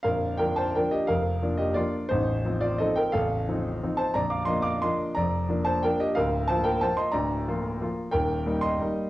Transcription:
<<
  \new Staff \with { instrumentName = "Grand piano" } { \time 3/4 \key bes \major \tempo 4 = 178 <bes' f''>4 <bes' g''>8 <c'' a''>8 <bes' g''>8 <g' ees''>8 | <bes' f''>4. <g' ees''>8 <f' d''>4 | <ees' c''>4. <f' d''>8 <a' ees''>8 <bes' g''>8 | <a' f''>2~ <a' f''>8 <c'' a''>8 |
<d'' bes''>8 <f'' d'''>8 <ees'' c'''>8 <f'' d'''>8 <ees'' c'''>4 | <d'' bes''>4. <c'' a''>8 <bes' g''>8 <g' ees''>8 | <bes' f''>4 <c'' a''>8 <bes' g''>8 <c'' a''>8 <ees'' c'''>8 | <d'' bes''>2~ <d'' bes''>8 r8 |
<bes' g''>4. <ees'' c'''>4. | }
  \new Staff \with { instrumentName = "Grand piano" } { \clef bass \time 3/4 \key bes \major <bes,,, bes,,>4 <f bes d'>4 <f bes d'>4 | <f,, f,>4 <f bes d'>4 <f bes d'>4 | <a,,, a,,>4 <f c' ees'>4 <f c' ees'>4 | <a,,, a,,>4 <f c' ees'>4 <f c' ees'>4 |
<bes,,, bes,,>4 <f bes d'>4 <f bes d'>4 | <f,, f,>4 <f bes d'>4 <f bes d'>4 | <d,, d,>4 <f bes f'>4 <f bes f'>4 | <d,, d,>4 <f bes f'>4 <f bes f'>4 |
<ees,, ees,>4 <g bes ees'>4 <g bes ees'>4 | }
>>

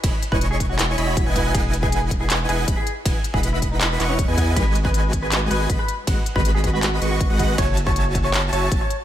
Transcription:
<<
  \new Staff \with { instrumentName = "Digital synth lead" } { \time 4/4 \key cis \minor \tempo 4 = 159 b''16 r8 cis'''4.~ cis'''16 b''8. gis''8. | gis''2~ gis''8 gis''8 b''16 r8. | gis''16 r8 b''4.~ b''16 cis'''8. gis''8. | gis''2~ gis''8 gis''8 b''16 r8. |
fis''16 r8 b''4.~ b''16 cis'''8. fis''8. | a''2~ a''8 a''8 a''16 r8. | }
  \new Staff \with { instrumentName = "Supersaw synth" } { \time 4/4 \key cis \minor <e' cis'' dis'' gis'' b''>16 r8 <e' cis'' dis'' gis'' cis'''>4.~ <e' cis'' dis'' gis'' cis'''>16 <e' cis'' dis'' gis'' b''>8. <e' b' dis'' fis'' gis''>8. | <e' b' fis'' gis''>2~ <e' b' fis'' gis''>8 <e' b' dis'' fis'' gis''>8 <e' b' b''>16 r8. | <e' b' dis'' fis'' gis''>16 r8 <e' b' dis'' fis'' b''>4.~ <e' b' dis'' fis'' b''>16 <e' b' dis'' fis'' cis'''>8. <e' b' dis'' fis'' gis''>8. | <gis fis' b' dis'' gis''>2~ <gis fis' b' dis'' gis''>8 <gis fis' b' dis'' gis''>8 <gis fis' b'>16 r8. |
<gis fis' b' dis'' fis''>16 r8 <gis fis' b' dis'' b''>4.~ <gis fis' b' dis'' b''>16 <gis fis' b' dis'' cis'''>8. <gis fis' b' dis'' fis''>8. | <fis' cis'' e'' gis'' a''>2~ <fis' cis'' e'' gis'' a''>8 <fis' cis'' e'' gis'' a''>8 cis''16 r8. | }
  \new Staff \with { instrumentName = "Clean electric guitar" } { \time 4/4 \key cis \minor r8. b'16 r16 gis'16 r16 fis'8 r8 fis'8 r8. | gis'8 r16 gis'8 r8 gis'8 r16 gis'8 r16 gis'8 r16 | r8. gis'16 r16 e'16 r16 dis'8 r8 cis'8 r8. | b'8 r16 b'8 r8 b'8 r16 b'8 r16 b'8 r16 |
r8. b'16 r16 gis'16 r16 fis'8 r8 fis'8 r8. | cis''8 r16 cis''8 r8 cis''8 r16 cis''8 r16 cis''8 r16 | }
  \new Staff \with { instrumentName = "Sub bass" } { \clef bass \time 4/4 \key cis \minor e,,16 r8 e,,4.~ e,,16 e,,8. e,,8. | e,,2~ e,,8 e,,8 e,,16 r8. | e,,16 r8 e,,4.~ e,,16 e,,8. e,8. | gis,,2~ gis,,8 gis,,8 gis,,16 r8. |
gis,,16 r8 gis,,4.~ gis,,16 gis,,8. gis,,8. | fis,,2~ fis,,8 fis,,8 fis,,16 r8. | }
  \new DrumStaff \with { instrumentName = "Drums" } \drummode { \time 4/4 <hh bd cymr>8 hh16 bd16 hh8 <hh bd>8 <hc hh>8 hh8 <hh bd>8 <hh bd>8 | <hh bd cymr>8 hh16 bd16 hh8 <hh bd>8 <hc hh>8 hh8 <hh bd>8 hh8 | <hh bd cymr>8 hh16 bd16 hh8 <hh bd>8 <hc hh>8 <hc hh>8 <hh bd>8 <hh bd>8 | <hh bd cymr>8 hh16 bd16 hh8 <hh bd>8 <hc hh>8 hh8 <hh bd>8 hh8 |
<hh bd cymr>8 hh16 bd16 hh8 <hh bd>8 <hc hh>8 hh8 <hh bd>8 <hh bd>8 | <hh bd cymr>8 hh16 bd16 hh8 <hh bd>8 <hc hh>8 hh8 <hh bd>8 hh8 | }
>>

